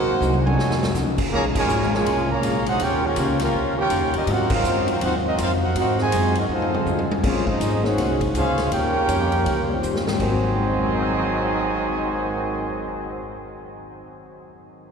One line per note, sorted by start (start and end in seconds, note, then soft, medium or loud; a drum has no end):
0.00 0.41 A#3 medium
0.00 0.41 D#4 medium
0.00 0.41 F#4 medium
0.00 0.41 A#4 medium
0.00 0.41 C5 medium
0.00 0.42 F#5 loud
0.07 muted upright bass stroke soft
0.20 0.56 C2 loud
0.20 0.45 C3 medium
0.20 0.46 F#3 medium
0.20 0.46 A#3 medium
0.20 0.46 D#4 medium
0.20 hi-hat pedal medium
0.20 high tom medium
0.34 high tom medium
0.45 0.89 C#3 medium
0.45 0.89 D#3 medium
0.45 0.89 F#3 medium
0.45 0.89 D#4 medium
0.45 0.89 A4 medium
0.45 0.89 C#5 medium
0.45 0.89 G#5 medium
0.45 high tom medium
0.57 0.94 F2 medium
0.57 0.82 F3 soft
0.57 0.82 C#4 medium
0.57 0.83 D#4 medium
0.57 0.83 A4 medium
0.57 snare medium
0.71 snare medium
0.83 snare loud
0.94 1.30 C#2 loud
0.94 1.19 F3 medium
0.94 1.19 C#4 medium
0.94 1.20 D#4 medium
0.94 1.20 A4 medium
0.94 snare medium
0.94 hi-hat pedal medium
1.18 kick medium
1.18 crash medium
1.31 1.67 A#1 medium
1.31 1.56 A#2 medium
1.31 1.43 C#3 loud
1.31 1.43 F3 medium
1.31 1.56 G#3 soft
1.31 1.43 A#3 medium
1.31 1.57 C#4 medium
1.31 1.57 F4 medium
1.31 1.44 G#4 loud
1.31 1.44 C#5 medium
1.31 1.44 F5 medium
1.31 1.44 A#5 loud
1.31 kick soft
1.55 1.90 C#3 medium
1.55 1.90 F3 medium
1.55 1.90 G#3 medium
1.55 1.91 F4 medium
1.55 1.91 A#4 loud
1.55 1.91 C#5 medium
1.55 1.91 G#5 loud
1.55 kick medium
1.55 crash medium
1.68 2.04 G#1 loud
1.68 1.93 A#2 medium
1.68 1.93 G#3 medium
1.68 1.93 C#4 medium
1.68 1.94 F4 medium
1.68 hi-hat pedal medium
1.82 snare soft
1.93 2.27 C#3 medium
1.93 2.27 F3 medium
1.93 2.27 G#3 loud
1.93 2.28 F4 medium
1.93 2.28 A#4 medium
1.93 2.28 C#5 medium
1.93 2.28 G#5 loud
1.93 snare medium
2.04 2.41 C2 medium
2.04 2.30 A#2 soft
2.04 2.30 G#3 soft
2.04 2.31 C#4 medium
2.04 2.31 F4 medium
2.04 kick soft
2.04 ride medium
2.30 2.66 C#3 medium
2.30 2.66 F3 medium
2.30 2.66 A#3 medium
2.30 2.67 G#4 medium
2.30 2.67 C#5 medium
2.30 2.67 F5 medium
2.30 2.67 A#5 loud
2.42 2.78 A#1 medium
2.42 2.67 A#2 medium
2.42 2.67 G#3 medium
2.42 2.67 C#4 medium
2.42 2.68 F4 medium
2.42 kick soft
2.42 hi-hat pedal soft
2.42 ride medium
2.66 2.80 D#4 medium
2.66 2.79 F#4 medium
2.66 2.80 G#4 medium
2.66 2.80 C5 medium
2.66 2.80 F#5 loud
2.66 ride medium
2.79 3.15 D#2 medium
2.79 3.04 D#3 soft
2.79 3.02 A#3 medium
2.79 3.04 C#4 medium
2.79 3.02 C#4 medium
2.79 3.04 F4 loud
2.79 3.03 G4 medium
2.79 3.05 G4 medium
2.79 3.04 A#4 medium
2.79 3.05 C5 medium
2.79 3.04 C#5 loud
2.79 3.04 G5 loud
2.79 kick soft
2.79 ride medium
3.03 3.40 A#3 medium
3.03 3.40 C#4 medium
3.03 3.42 C#4 medium
3.03 3.40 F4 medium
3.03 3.41 G4 medium
3.03 3.41 A#4 medium
3.03 3.41 F5 medium
3.16 3.52 C#2 loud
3.16 3.41 D#3 medium
3.16 3.42 C#4 medium
3.16 3.42 G4 medium
3.16 3.42 C5 medium
3.16 kick soft
3.16 hi-hat pedal medium
3.16 ride medium
3.39 3.75 A#3 medium
3.39 3.75 C#4 medium
3.39 3.76 C#4 medium
3.39 3.75 F4 medium
3.39 3.75 G4 medium
3.39 3.76 A#4 medium
3.39 3.75 F5 loud
3.39 snare soft
3.39 ride medium
3.53 3.89 D#2 medium
3.53 3.78 D#3 soft
3.53 3.78 C#4 medium
3.53 3.79 G4 medium
3.53 3.79 C5 medium
3.53 kick soft
3.77 4.11 A#3 medium
3.77 4.11 C#4 medium
3.77 4.13 F4 medium
3.77 4.12 G4 medium
3.77 4.13 A#4 medium
3.77 4.13 C#5 medium
3.77 4.13 G5 loud
3.90 4.02 F2 loud
3.90 4.15 D#3 medium
3.90 4.15 C#4 medium
3.90 4.15 G4 medium
3.90 4.16 C5 medium
3.90 kick soft
3.90 hi-hat pedal medium
3.90 ride medium
4.02 4.14 D#2 medium
4.14 4.26 C#2 medium
4.14 4.28 G3 medium
4.14 4.28 A#3 medium
4.14 4.29 C#4 medium
4.14 4.28 D#4 medium
4.14 4.29 G4 medium
4.14 4.29 A#4 medium
4.14 4.29 D#5 medium
4.14 ride medium
4.26 4.51 G#2 medium
4.26 4.63 G#2 medium
4.26 4.52 F#3 medium
4.26 4.53 C4 medium
4.26 4.51 C4 medium
4.26 4.52 D#4 medium
4.26 4.53 F4 medium
4.26 4.52 F#4 medium
4.26 kick soft
4.26 ride medium
4.31 4.52 D#4 medium
4.31 4.53 A#4 medium
4.31 4.52 C5 medium
4.31 4.52 F#5 loud
4.50 4.86 F#3 medium
4.50 4.86 C4 medium
4.50 4.87 D#4 medium
4.50 4.86 F4 medium
4.50 4.87 C5 medium
4.50 kick loud
4.50 crash medium
4.54 4.87 A#4 medium
4.54 4.87 F5 loud
4.64 5.00 F#2 loud
4.64 4.89 G#2 medium
4.64 4.89 F#3 medium
4.64 4.89 C4 medium
4.64 4.90 F4 medium
4.64 hi-hat pedal medium
4.88 5.01 F#3 medium
4.88 5.00 C4 medium
4.88 5.02 D#4 medium
4.88 5.01 F4 medium
4.88 5.01 A#4 medium
4.88 5.02 C5 medium
4.88 5.02 F5 medium
4.88 ride medium
5.01 5.37 D#2 medium
5.01 5.26 G#2 medium
5.01 5.26 F#3 medium
5.01 5.12 C4 medium
5.01 5.26 C4 medium
5.01 5.12 D#4 medium
5.01 5.14 D#4 medium
5.01 5.27 F4 medium
5.01 5.12 F#4 medium
5.01 5.14 A#4 medium
5.01 5.14 C5 medium
5.01 5.14 F#5 loud
5.01 kick soft
5.01 ride medium
5.24 5.37 F#3 medium
5.24 5.37 C4 medium
5.24 5.39 C4 medium
5.24 5.37 D#4 medium
5.24 5.39 F#4 medium
5.24 5.39 A#4 medium
5.24 5.39 D#5 medium
5.37 5.74 F2 loud
5.37 5.62 G#2 medium
5.37 5.63 F#3 medium
5.37 5.49 F#3 medium
5.37 5.63 C4 medium
5.37 5.49 C4 medium
5.37 5.49 F4 medium
5.37 5.63 F4 medium
5.37 kick soft
5.37 hi-hat pedal medium
5.37 ride medium
5.41 5.51 D#4 medium
5.41 5.51 A#4 medium
5.41 5.51 C5 medium
5.41 5.51 F5 loud
5.63 5.75 C4 medium
5.63 5.75 D#4 medium
5.63 5.76 D#4 medium
5.63 5.75 F#4 medium
5.63 5.76 A#4 medium
5.63 5.76 C5 medium
5.63 5.76 F#5 medium
5.75 5.99 G#2 soft
5.75 6.11 G#2 medium
5.75 6.00 F#3 soft
5.75 5.97 C4 medium
5.75 6.01 C4 medium
5.75 5.97 D#4 medium
5.75 6.01 F4 medium
5.75 5.97 F#4 medium
5.75 5.99 A#4 medium
5.75 kick soft
5.75 ride medium
5.79 5.99 D#4 medium
5.79 5.99 C5 medium
5.79 5.99 F#5 medium
5.98 6.33 C3 medium
5.98 6.33 D#3 medium
5.98 6.33 G#3 medium
5.98 6.35 D#5 medium
5.98 snare soft
6.02 6.35 F#4 medium
6.02 6.35 C5 medium
6.02 6.35 G#5 medium
6.12 6.48 F#2 loud
6.12 6.37 G#2 medium
6.12 6.37 F#3 medium
6.12 6.38 C4 medium
6.12 6.38 F4 medium
6.12 kick soft
6.12 hi-hat pedal medium
6.12 ride medium
6.35 6.43 F#3 medium
6.35 6.43 C4 medium
6.35 6.43 D#4 medium
6.35 6.44 F#4 medium
6.35 6.45 D#5 medium
6.35 ride medium
6.40 6.45 C4 medium
6.40 6.45 A#4 medium
6.49 6.85 F2 medium
6.49 6.74 F3 medium
6.49 7.06 A3 medium
6.49 6.75 A3 medium
6.49 7.06 C4 medium
6.49 6.75 D#4 medium
6.49 7.07 D#4 medium
6.49 7.06 F4 medium
6.49 6.75 F#4 medium
6.49 7.07 A4 medium
6.49 7.07 C5 medium
6.49 7.07 F5 medium
6.49 high tom medium
6.62 mid tom medium
6.74 mid tom medium
6.85 7.22 D#2 medium
6.85 7.11 F3 medium
6.85 7.11 A3 medium
6.85 7.12 D#4 medium
6.85 7.12 F#4 medium
6.85 hi-hat pedal medium
6.85 high tom medium
6.99 high tom medium
7.11 high tom loud
7.23 7.59 A#1 medium
7.23 7.44 G#3 medium
7.23 7.45 G#3 medium
7.23 7.48 A#3 soft
7.23 7.44 A#3 medium
7.23 7.44 C4 medium
7.23 7.45 C#4 medium
7.23 7.44 C#4 medium
7.23 7.48 C#4 medium
7.23 7.46 C#4 medium
7.23 7.45 F4 medium
7.23 7.49 G#4 medium
7.23 7.46 G#4 medium
7.23 7.46 C5 medium
7.23 7.49 C5 medium
7.23 7.46 F5 medium
7.23 kick medium
7.23 crash medium
7.47 7.83 F3 medium
7.47 7.83 G#3 medium
7.47 7.84 C#4 medium
7.47 7.83 D#4 medium
7.47 7.84 G#4 medium
7.47 7.84 C5 medium
7.47 7.84 D#5 medium
7.47 kick medium
7.60 7.96 G#1 medium
7.60 7.85 A#3 medium
7.60 7.86 C#4 medium
7.60 7.86 G#4 medium
7.60 7.86 C5 medium
7.60 kick soft
7.60 hi-hat pedal medium
7.60 ride medium
7.83 8.31 G#3 medium
7.83 8.21 G#3 medium
7.83 8.31 A#3 medium
7.83 8.21 C#4 medium
7.83 8.32 C#4 medium
7.83 8.21 C#4 medium
7.83 8.32 D#4 medium
7.83 8.21 F#4 medium
7.83 8.21 G#4 medium
7.83 8.32 C5 medium
7.83 8.21 C5 medium
7.83 8.21 F#5 medium
7.83 snare soft
7.97 8.33 C2 medium
7.97 8.22 A#3 soft
7.97 8.23 C#4 medium
7.97 8.23 G#4 medium
7.97 8.24 C5 medium
7.97 kick soft
7.97 snare soft
7.97 ride medium
8.21 kick medium
8.21 ride medium
8.34 8.70 C#2 medium
8.34 8.69 G#3 medium
8.34 8.59 A#3 medium
8.34 8.69 C#4 medium
8.34 8.59 C#4 medium
8.34 8.70 C#4 medium
8.34 8.69 F4 medium
8.34 8.59 G#4 medium
8.34 8.70 G#4 loud
8.34 8.60 C5 medium
8.34 8.70 C5 medium
8.34 8.70 F5 loud
8.34 kick soft
8.34 hi-hat pedal medium
8.34 ride medium
8.58 snare medium
8.58 ride medium
8.71 9.07 D#2 medium
8.71 8.96 D#3 soft
8.71 9.79 A#3 loud
8.71 8.96 C#4 soft
8.71 9.79 C#4 loud
8.71 9.79 F4 medium
8.71 9.79 G4 medium
8.71 8.97 G4 medium
8.71 9.79 A#4 loud
8.71 8.97 C5 medium
8.71 9.79 C#5 medium
8.71 9.79 G5 loud
8.71 kick soft
8.71 ride medium
9.07 9.44 F2 loud
9.07 9.32 D#3 medium
9.07 9.33 C#4 medium
9.07 9.33 G4 medium
9.07 9.33 C5 medium
9.07 kick soft
9.07 hi-hat pedal medium
9.07 ride medium
9.32 ride soft
9.45 9.81 C#2 medium
9.45 9.70 D#3 medium
9.45 9.70 C#4 medium
9.45 9.71 G4 medium
9.45 9.71 C5 medium
9.45 kick soft
9.45 ride medium
9.68 10.16 G3 medium
9.68 10.16 A#3 medium
9.68 10.17 C4 medium
9.68 10.17 C#4 medium
9.68 10.17 F4 medium
9.82 10.18 D#2 medium
9.82 10.07 D#3 medium
9.82 10.07 C#4 medium
9.82 10.07 G4 medium
9.82 10.08 C5 medium
9.82 hi-hat pedal medium
9.95 snare medium
10.07 13.20 G#2 medium
10.07 snare loud
10.12 13.66 G#2 medium
10.12 13.25 D#3 medium
10.17 13.28 G#1 medium
10.17 13.28 G#2 loud
10.17 13.29 D#3 loud
10.17 13.30 F#3 medium
10.17 13.29 F#3 loud
10.17 13.28 C4 loud
10.17 kick medium
10.17 crash medium
10.21 13.72 F#3 medium
10.21 13.35 A#3 medium
10.21 13.30 F#4 medium
10.21 13.30 C5 medium
10.21 13.30 D#5 medium
10.21 13.30 G#5 medium
10.27 13.77 C4 medium
10.27 13.40 C4 medium
10.32 13.44 F#4 medium
10.57 13.66 G#4 soft
10.64 13.73 C5 soft
10.73 13.81 F5 soft
10.82 13.90 G#5 soft
10.92 14.00 C6 soft
11.02 14.11 F6 soft
11.14 14.23 G#6 soft